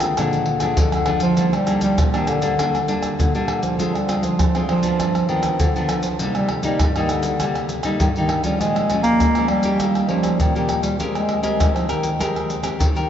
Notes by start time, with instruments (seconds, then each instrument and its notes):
Already playing: nylon-string guitar D3 G#3 C4 F4, bass clarinet D#3
0.00 pandeiro, tamborim, maracas, surdo
0.17 nylon-string guitar A#2 F3 G#3 D4, bass clarinet D3, pandeiro, tamborim, maracas, surdo
0.33 pandeiro, maracas
0.46 pandeiro
0.60 nylon-string guitar F3 G#3 D4, pandeiro, tamborim, maracas, surdo
0.77 nylon-string guitar F2, bass clarinet D3, pandeiro, maracas, surdo
0.92 bass clarinet D3, pandeiro, tamborim, maracas, surdo
1.06 nylon-string guitar F3 G#3 D4, pandeiro, tamborim
1.20 bass clarinet F3, pandeiro, maracas, surdo
1.37 nylon-string guitar D#3 G3 A#3 D4, pandeiro, maracas, surdo
1.53 bass clarinet G3, pandeiro, tamborim, maracas
1.67 nylon-string guitar G3 A#3 D4, pandeiro, tamborim, maracas
1.81 bass clarinet G3, pandeiro, maracas, surdo
1.98 nylon-string guitar A#2, pandeiro, tamborim, maracas, surdo
2.14 bass clarinet D#3, nylon-string guitar G3 A#3 D4, pandeiro, tamborim, maracas
2.27 bass clarinet D3, pandeiro, tamborim, maracas
2.42 nylon-string guitar G3 A#3 D4, pandeiro, maracas, surdo
2.59 nylon-string guitar G3 A#3 D4, pandeiro, tamborim, maracas, surdo
2.75 pandeiro, tamborim, maracas
2.88 nylon-string guitar G3 A#3 D4, pandeiro, maracas
3.03 pandeiro, tamborim, maracas, surdo
3.19 nylon-string guitar A#2, bass clarinet D3, pandeiro, maracas, surdo
3.35 bass clarinet D3, nylon-string guitar G3 A#3 D4, pandeiro, maracas
3.48 pandeiro, tamborim
3.63 bass clarinet F3, pandeiro, maracas, surdo
3.79 nylon-string guitar D3 G#3 C4 F4, pandeiro, maracas, surdo
3.95 bass clarinet G3, pandeiro, tamborim, maracas
4.08 nylon-string guitar G#3 C4 F4, pandeiro, tamborim, maracas
4.23 bass clarinet F3, pandeiro, maracas, surdo
4.39 nylon-string guitar D3, pandeiro, tamborim, maracas, surdo
4.55 bass clarinet F3, nylon-string guitar G#3 C4 F4, pandeiro, tamborim, maracas
4.69 bass clarinet F3, pandeiro, tamborim
4.83 nylon-string guitar F3 B3 D4, pandeiro, maracas, surdo
5.00 nylon-string guitar G2, pandeiro, tamborim, maracas, surdo
5.15 pandeiro, tamborim, maracas
5.28 bass clarinet D#3, nylon-string guitar F3 B3 D4, pandeiro
5.43 pandeiro, tamborim, maracas, surdo
5.60 bass clarinet D3, nylon-string guitar D3, pandeiro, maracas, surdo
5.76 bass clarinet D3, nylon-string guitar F3 B3 D4, pandeiro, maracas
5.89 pandeiro, tamborim, maracas
6.03 bass clarinet F3, pandeiro, maracas, surdo
6.19 nylon-string guitar C3 G3 A#3 D#4, pandeiro, maracas, surdo
6.35 bass clarinet G3, pandeiro, tamborim, maracas
6.49 pandeiro, tamborim, surdo
6.63 nylon-string guitar G3 A#3 D#4, bass clarinet G3, pandeiro, maracas, surdo
6.79 nylon-string guitar G2, pandeiro, tamborim, maracas, surdo
6.96 bass clarinet D#3, nylon-string guitar G3 A#3 D#4, pandeiro, tamborim, maracas
7.09 bass clarinet D3, pandeiro, tamborim, maracas
7.23 pandeiro, maracas, surdo
7.40 nylon-string guitar C3 G3 A#3, pandeiro, tamborim, maracas, surdo
7.55 pandeiro, tamborim, maracas
7.69 pandeiro, maracas
7.83 nylon-string guitar G3 A#3 D#4, pandeiro, tamborim, maracas, surdo
8.00 nylon-string guitar G2, bass clarinet D#3, pandeiro, maracas, surdo
8.15 bass clarinet D#3, nylon-string guitar G3 A#3 D#4, pandeiro, maracas
8.29 pandeiro, tamborim
8.44 nylon-string guitar F3 G#3 C#4, bass clarinet G3, pandeiro, maracas, surdo
8.60 nylon-string guitar A#2, bass clarinet G#3, pandeiro, maracas, surdo
8.76 pandeiro, tamborim, maracas
8.90 nylon-string guitar F3 G#3 C#4, pandeiro, tamborim, maracas, surdo
9.03 bass clarinet A#3, pandeiro, maracas, surdo
9.20 nylon-string guitar F2, pandeiro, tamborim, maracas, surdo
9.35 nylon-string guitar F3 G#3 C#4, pandeiro, tamborim, maracas
9.48 bass clarinet G3, pandeiro, tamborim
9.63 nylon-string guitar A#3 C#4 G4, pandeiro, maracas, surdo
9.80 nylon-string guitar D#3, pandeiro, tamborim, maracas, surdo
9.95 pandeiro, tamborim, maracas
10.09 bass clarinet F3, nylon-string guitar A#3 C#4 G4, pandeiro
10.23 pandeiro, tamborim, maracas, surdo
10.40 nylon-string guitar A#2, bass clarinet D#3, pandeiro, maracas, surdo
10.55 bass clarinet D#3, nylon-string guitar A#3 C#4 G4, pandeiro, maracas
10.69 pandeiro, tamborim, maracas
10.83 bass clarinet G3, pandeiro, maracas, surdo
11.00 nylon-string guitar G#3 C4 G4 A#4, pandeiro, maracas, surdo
11.15 bass clarinet G#3, pandeiro, tamborim, maracas
11.29 pandeiro, tamborim
11.42 bass clarinet G#3, nylon-string guitar C4 G4 A#4, pandeiro, maracas, surdo
11.60 nylon-string guitar D#3, pandeiro, tamborim, maracas, surdo
11.74 bass clarinet F3, pandeiro, tamborim, maracas
11.88 bass clarinet D#3, nylon-string guitar C4 G4 A#4, pandeiro, tamborim, maracas
12.03 pandeiro, maracas, surdo
12.19 nylon-string guitar G#3 C4 G4 A#4, pandeiro, tamborim, maracas, surdo
12.36 pandeiro, tamborim, maracas
12.50 pandeiro, maracas
12.63 nylon-string guitar C4 G4 A#4, pandeiro, tamborim, maracas, surdo
12.79 bass clarinet D#3, nylon-string guitar D#3, pandeiro, maracas, surdo
12.95 bass clarinet D#3, nylon-string guitar C4 G4 A#4, pandeiro, maracas